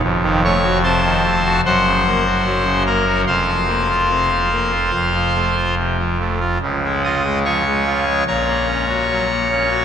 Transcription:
<<
  \new Staff \with { instrumentName = "Pipe organ" } { \time 4/4 \key f \phrygian \tempo 4 = 73 r8 <des'' des'''>8 <c'' a'' c'''>4 <c'' ges'' c'''>4. <bes' bes''>8 | <c'' f'' c'''>2. r4 | r8 <ees'' ees'''>8 <des'' aes'' des'''>4 <des'' bes'' des'''>2 | }
  \new Staff \with { instrumentName = "Pipe organ" } { \clef bass \time 4/4 \key f \phrygian << { f,16 ees16 a16 ges'16 c16 ees16 a16 ges'16 ges,16 des16 bes16 ges'16 ges16 des16 bes16 ges'16 | f,16 f16 bes16 f'16 c16 f16 bes16 f'16 f,16 f16 a16 f'16 c16 f16 a16 f'16 | des16 aes16 f'16 aes16 f16 aes16 f'16 aes16 bes,16 bes16 des'16 ges'16 ges16 bes16 des'16 ges'16 | } \\ { f,,2 ges,,2 | f,,2 f,,2 | des,2 bes,,2 | } >> }
>>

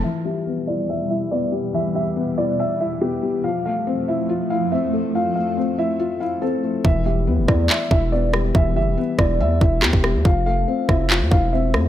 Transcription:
<<
  \new Staff \with { instrumentName = "Grand piano" } { \time 4/4 \key e \phrygian \tempo 4 = 141 e''8 e''4 d''4 e''8 d''8 r8 | e''8 e''4 d''4 e''8 g'4 | f''8 f''4 e''4 f''8 e''8 r8 | f''8 f''4 e''4 f''8 a'4 |
e''8 e''4 d''4 e''8 d''8 r8 | e''8 e''4 d''4 e''8 g'4 | f''8 f''4 e''4 f''8 e''8 r8 | }
  \new Staff \with { instrumentName = "Felt piano" } { \time 4/4 \key e \phrygian e8 g8 b8 e'8 e''8 e'8 b8 g8 | e8 g8 b8 e'8 e''8 e'8 b8 g8 | f8 a8 c'8 e'8 f'8 e'8 c'8 a8 | f8 a8 c'8 e'8 f'8 e'8 c'8 a8 |
e8 g8 b8 e'8 e''8 e'8 b8 g8 | e8 g8 b8 e'8 e''8 e'8 b8 g8 | f8 a8 c'8 e'8 f'8 e'8 c'8 a8 | }
  \new Staff \with { instrumentName = "Ambient pad" } { \clef bass \time 4/4 \key e \phrygian <e, b, g>1~ | <e, b, g>1 | <f, f a>1~ | <f, f a>1 |
r1 | r1 | r1 | }
  \new Staff \with { instrumentName = "808-style bass" } { \clef bass \time 4/4 \key e \phrygian r1 | r1 | r1 | r1 |
e,,4 e,16 e,,16 e,8 r8 e,,4. | e,,8 g,,16 e,,16 r8 e,,8 e,8 e,,8 e,16 e,,8 e,16 | f,,4 r8 f,,8. f,16 e,,4 f,8 | }
  \new DrumStaff \with { instrumentName = "Drums" } \drummode { \time 4/4 r4 r4 r4 r4 | r4 r4 r4 r4 | r4 r4 r4 r4 | r4 r4 r4 r4 |
bd4 r8 <bd ss>8 hc8 bd8 r8 ss8 | bd4 r8 <bd ss>8 r8 bd8 hc16 bd16 ss8 | bd4 r8 <bd ss>8 hc8 bd8 r8 ss8 | }
>>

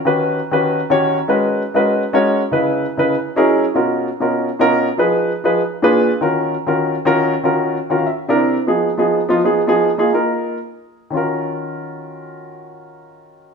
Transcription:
\new Staff \with { instrumentName = "Upright piano" } { \time 4/4 \key ees \minor \tempo 4 = 195 << { r1 | r1 | r1 | r1 |
r1 | r1 | r4. ges''16 f''16 e''8. d''16 c''4 | r1 |
r1 | r1 | r1 | } \\ { <ees des' fis' g' b'>4 r8 <ees des' fis' g' b'>4 r16 <ees des' fis' g' des''>8. r8 | <aes des' ees' ges' bes' ces''>4 r8 <aes des' ees' ges' bes' ces''>4 r16 <aes des' ees' ges' bes' des''>8. r8 | <des ees' fes' ces''>4 r8 <des ees' fes' ces''>8 r8. <ges des' ees' fes' aes' bes'>8. r8 | <b, cis' dis' eis' fis' ais'>4 r8 <b, cis' dis' eis' fis' ais'>4 r16 <b, cis' dis' eis' fis' ais'>8. r8 |
<f ees' aes' ces''>4 r8 <f ees' aes' ces''>8 r8. <bes, d' f' aes' ces''>8. r8 | <ees des' f' ges' bes'>4 r8 <ees des' f' ges' bes'>4 r16 <ees des' f' ges' bes'>8. r8 | <ees des' f' ges' bes'>4 r8 <ees des' f' ges' bes'>8 r8. <c d' e' bes'>8. r8 | <f ces' ees' aes'>8. r16 <f ces' ees' aes'>8. r16 <f ces' ees' f'>16 r16 <f ces' ees' aes'>8 r16 <f ces' ees' aes'>8. |
r16 <bes ees' f' aes'>16 r16 <bes ees' f' bes'>4. r4. r16 | <ees des' f' ges' bes'>1~ | <ees des' f' ges' bes'>1 | } >> }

